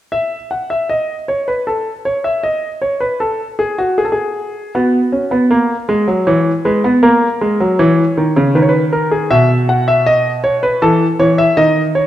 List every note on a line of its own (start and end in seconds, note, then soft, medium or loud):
0.12 0.36 E5 medium
0.51 0.70 F#5 soft
0.70 0.89 E5 medium
0.89 1.14 D#5 medium
1.28 1.47 C#5 medium
1.48 1.66 B4 medium
1.67 1.91 A4 medium
2.05 2.24 C#5 medium
2.24 2.43 E5 medium
2.43 2.67 D#5 medium
2.82 3.00 C#5 medium
3.00 3.20 B4 medium
3.20 3.44 A4 medium
3.59 3.78 G#4 medium
3.78 3.97 F#4 medium
3.98 4.05 G#4 medium
4.05 4.12 A4 medium
4.12 4.73 G#4 medium
4.75 4.98 B3 medium
4.75 6.23 F#4 medium
5.12 5.31 C#4 medium
5.31 5.50 B3 medium
5.51 5.74 A#3 medium
5.89 6.07 G#3 medium
6.08 6.26 F#3 medium
6.27 6.50 E3 medium
6.27 6.50 C#5 medium
6.65 6.83 G#3 medium
6.65 6.88 B4 medium
6.84 7.03 B3 medium
7.03 7.26 A#3 medium
7.03 7.77 A#4 medium
7.41 7.60 G#3 medium
7.60 7.79 F#3 medium
7.79 8.03 E3 medium
7.79 8.53 C#5 medium
8.17 8.36 D#3 medium
8.36 8.55 C#3 medium
8.55 9.28 D#3 medium
8.55 8.59 B4 medium
8.62 8.69 C#5 medium
8.69 8.84 B4 medium
8.93 9.11 A#4 medium
9.11 9.30 G#4 medium
9.31 10.78 B2 medium
9.31 9.54 E5 medium
9.69 9.87 F#5 medium
9.88 10.06 E5 medium
10.06 10.30 D#5 medium
10.44 10.62 C#5 medium
10.63 10.81 B4 medium
10.82 11.05 E3 medium
10.82 11.05 A4 medium
11.19 11.43 E3 medium
11.19 11.38 C#5 medium
11.38 11.57 E5 medium
11.57 12.07 D#3 medium
11.57 11.80 D#5 medium
11.95 12.07 C#5 medium